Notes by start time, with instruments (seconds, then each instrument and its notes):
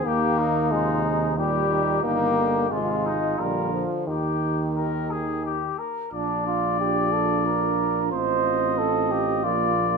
Already playing: euphonium D#3
0.06 tuba D#2, french horn A#3, trumpet G4, cornet G4
0.39 trumpet D#4, cornet D#4
0.71 euphonium C3, french horn G#3, trumpet F4
1.05 trumpet D#4
1.38 euphonium A#2, french horn G3, trumpet G4, cornet G4
1.72 trumpet D#4
2.03 tuba G1, euphonium D#3, french horn A#3, cornet G4
2.38 euphonium D3
2.71 tuba G#1, euphonium C3, french horn G#3, cornet F4, trumpet F4
3.06 cornet D#4
3.39 tuba A#1, euphonium D3, french horn G3, cornet A#4
3.73 french horn F3
4.07 tuba D#2, french horn D#3, euphonium D#3, trumpet G4, cornet G4
4.77 cornet A#4
5.10 cornet G#4
5.45 cornet G4
5.78 cornet A#4
6.12 tuba A#1, euphonium D4, trumpet D4, french horn F4, cornet D5
6.47 trumpet F4
6.80 trumpet G4
7.13 trumpet A4
7.46 trumpet A#4
8.12 tuba A1, euphonium C4, trumpet C5, cornet D#5
8.78 trumpet A4
9.11 trumpet G4
9.44 tuba A#1, euphonium A#3, trumpet F4, cornet D5